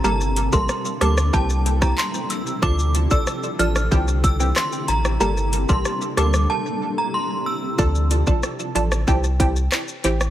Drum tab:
HH |--x---x---x---x-|--x---x---x---x-|--x---x---------|--x---x---x---x-|
SH |xxxxxxxxxxxxxxxx|xxxxxxxxxxxxxxxx|xxxxxxxx--------|xxxxxxxxxxxxxxxx|
CP |------------x---|------------x---|----------------|------------x---|
SD |----r-rr---r----|----r--r----r--r|----r-rr--------|----r--r----r--r|
BD |---o----o--o----|o--o----o-o-----|---o------------|o--o----o-o-----|